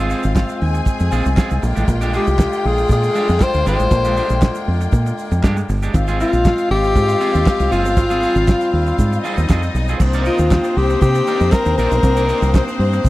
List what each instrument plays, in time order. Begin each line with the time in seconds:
Already playing: fingered electric bass G#1, woodwind section F3 G#3 C4, string section F4 F5
0.00 clean electric guitar G#4
0.10 clean electric guitar C4 F4 G#4, open hi-hat, shaker
0.23 fingered electric bass G#1, muted clean electric guitar stroke, closed hi-hat, shaker
0.36 muted clean electric guitar stroke, kick, snare, clap, shaker
0.49 muted clean electric guitar stroke, closed hi-hat, shaker
0.60 fingered electric bass D#2, string section G#4 G#5, open hi-hat
0.75 muted clean electric guitar stroke, closed hi-hat, shaker
0.85 kick, closed hi-hat, shaker
1.00 fingered electric bass F2, muted clean electric guitar stroke, closed hi-hat, shaker
1.11 fingered electric bass A#1, clean electric guitar C4 F4 G#4, open hi-hat, shaker
1.25 fingered electric bass C2, muted clean electric guitar stroke, closed hi-hat, shaker
1.37 clean electric guitar C4 F4 G#4, kick, snare, clap, shaker
1.50 fingered electric bass C2, muted clean electric guitar stroke, closed hi-hat, shaker
1.62 fingered electric bass A#1, woodwind section D3 A#3, string section F4 G5, muted clean electric guitar stroke, open hi-hat, shaker
1.75 fingered electric bass A1, clean electric guitar G#3 D4 G4, closed hi-hat, shaker
1.88 fingered electric bass A#1, muted clean electric guitar stroke, kick, closed hi-hat, shaker
2.01 clean electric guitar G#3 D4 G4, closed hi-hat, shaker
2.13 clean electric guitar G#3 D4 G#4, tenor saxophone G4, open hi-hat, shaker
2.26 fingered electric bass C2, muted clean electric guitar stroke, closed hi-hat, shaker
2.39 muted clean electric guitar stroke, kick, snare, clap, shaker
2.52 muted clean electric guitar stroke, closed hi-hat, shaker
2.65 fingered electric bass A#1, tenor saxophone G#4, open hi-hat
2.78 muted clean electric guitar stroke, closed hi-hat, shaker
2.88 fingered electric bass A#2, kick, closed hi-hat, shaker
2.92 tenor saxophone G#4
3.03 muted clean electric guitar stroke, closed hi-hat, shaker
3.14 clean electric guitar G#3 D4 G4, open hi-hat, shaker
3.28 fingered electric bass F2, muted clean electric guitar stroke, closed hi-hat, shaker
3.40 tenor saxophone C5, muted clean electric guitar stroke, kick, snare, clap, shaker
3.54 fingered electric bass D2, muted clean electric guitar stroke, closed hi-hat, shaker
3.66 fingered electric bass G#1, clean electric guitar G#3 D4 G4, tenor saxophone C5, open hi-hat, shaker
3.80 fingered electric bass A1, muted clean electric guitar stroke, closed hi-hat, shaker
3.91 fingered electric bass A#1, muted clean electric guitar stroke, kick, closed hi-hat, shaker
4.05 clean electric guitar G#3 D4 G4, closed hi-hat, shaker
4.17 clean electric guitar G#3 D4 G4, open hi-hat, shaker
4.29 fingered electric bass A#1, muted clean electric guitar stroke, closed hi-hat, shaker
4.42 muted clean electric guitar stroke, kick, snare, clap, shaker
4.55 muted clean electric guitar stroke, closed hi-hat, shaker
4.68 fingered electric bass F2, open hi-hat
4.81 muted clean electric guitar stroke, closed hi-hat, shaker
4.92 fingered electric bass A#2, muted clean electric guitar stroke, kick, closed hi-hat, shaker
5.06 muted clean electric guitar stroke, closed hi-hat, shaker
5.17 open hi-hat, shaker
5.31 fingered electric bass F2, muted clean electric guitar stroke, closed hi-hat, shaker
5.43 fingered electric bass G2, clean electric guitar G#3 D4 G4, kick, snare, clap, shaker
5.57 muted clean electric guitar stroke, closed hi-hat, shaker
5.69 fingered electric bass G1, muted clean electric guitar stroke, open hi-hat, shaker
5.82 clean electric guitar G#3 D4 G4, closed hi-hat, shaker
5.94 fingered electric bass G#1, woodwind section F3 G#3 C4, string section F4 F5, muted clean electric guitar stroke, kick, closed hi-hat, shaker
6.08 clean electric guitar C4 F4 G#4, closed hi-hat, shaker
6.20 clean electric guitar C4 F4 A#4, tenor saxophone F4, open hi-hat, shaker
6.33 fingered electric bass A#1, muted clean electric guitar stroke, closed hi-hat, shaker
6.45 muted clean electric guitar stroke, kick, snare, clap, shaker
6.58 muted clean electric guitar stroke, closed hi-hat, shaker
6.70 fingered electric bass G#1, tenor saxophone G4, open hi-hat
6.84 muted clean electric guitar stroke, closed hi-hat, shaker
6.95 fingered electric bass G#2, kick, closed hi-hat, shaker
7.09 muted clean electric guitar stroke, closed hi-hat, shaker
7.20 clean electric guitar C4 F4 G#4, open hi-hat, shaker
7.34 fingered electric bass D#2, muted clean electric guitar stroke, closed hi-hat, shaker
7.46 muted clean electric guitar stroke, kick, snare, clap, shaker
7.60 fingered electric bass C2, muted clean electric guitar stroke, closed hi-hat, shaker
7.71 fingered electric bass F#1, clean electric guitar C4 F4 G#4, tenor saxophone F4, open hi-hat, shaker
7.85 fingered electric bass G1, muted clean electric guitar stroke, closed hi-hat, shaker
7.97 fingered electric bass G#1, woodwind section G3, muted clean electric guitar stroke, kick, closed hi-hat, shaker
8.10 clean electric guitar C4 F4 G#4, closed hi-hat, shaker
8.22 clean electric guitar C4 F4 G#4, open hi-hat, shaker
8.35 fingered electric bass G#1, muted clean electric guitar stroke, closed hi-hat, shaker
8.48 muted clean electric guitar stroke, kick, snare, clap, shaker
8.61 muted clean electric guitar stroke, closed hi-hat, shaker
8.73 fingered electric bass D#2, open hi-hat
8.87 muted clean electric guitar stroke, closed hi-hat, shaker
8.98 fingered electric bass G#2, kick, closed hi-hat, shaker
9.12 muted clean electric guitar stroke, closed hi-hat, shaker
9.23 clean electric guitar C4 F4 G#4, string section D#4 D#5, open hi-hat, shaker
9.38 fingered electric bass D#2, muted clean electric guitar stroke, closed hi-hat, shaker
9.49 fingered electric bass F2, clean electric guitar C4 F4 G#4, kick, snare, clap, shaker
9.63 muted clean electric guitar stroke, closed hi-hat, shaker
9.74 fingered electric bass B1, muted clean electric guitar stroke, open hi-hat, shaker
9.88 clean electric guitar C4 F4 G#4, closed hi-hat, shaker
10.00 fingered electric bass C2, woodwind section C3 A#3 D4 D#4, string section C4 C5, muted clean electric guitar stroke, kick, crash, shaker
10.13 clean electric guitar D#4 A#4 D5, closed hi-hat, shaker
10.25 clean electric guitar D#4 A#4 D#5, tenor saxophone F4, open hi-hat, shaker
10.38 fingered electric bass D#2, muted clean electric guitar stroke, closed hi-hat, shaker
10.51 muted clean electric guitar stroke, kick, snare, clap, shaker
10.64 muted clean electric guitar stroke, closed hi-hat, shaker
10.77 fingered electric bass C2, tenor saxophone G4, open hi-hat
10.90 muted clean electric guitar stroke, closed hi-hat, shaker
11.01 fingered electric bass C3, tenor saxophone G4, kick, closed hi-hat, shaker
11.15 muted clean electric guitar stroke, closed hi-hat, shaker
11.26 clean electric guitar D#4 A#4 D5, open hi-hat, shaker
11.40 fingered electric bass F2, muted clean electric guitar stroke, closed hi-hat, shaker
11.52 tenor saxophone A#4, muted clean electric guitar stroke, kick, snare, clap, shaker
11.65 fingered electric bass D#2, muted clean electric guitar stroke, closed hi-hat, shaker
11.78 fingered electric bass A#1, clean electric guitar D#4 A#4 D5, tenor saxophone A#4, open hi-hat, shaker
11.91 fingered electric bass B1, muted clean electric guitar stroke, closed hi-hat, shaker
12.03 fingered electric bass C2, muted clean electric guitar stroke, kick, closed hi-hat, shaker
12.17 clean electric guitar D#4 A#4 D5, closed hi-hat, shaker
12.29 clean electric guitar D#4 A#4 D5, open hi-hat, shaker
12.42 fingered electric bass C2, muted clean electric guitar stroke, closed hi-hat, shaker
12.54 muted clean electric guitar stroke, kick, snare, clap, shaker
12.68 muted clean electric guitar stroke, closed hi-hat, shaker
12.79 fingered electric bass G2, open hi-hat
12.93 muted clean electric guitar stroke, closed hi-hat, shaker
13.04 fingered electric bass C3, kick, closed hi-hat, shaker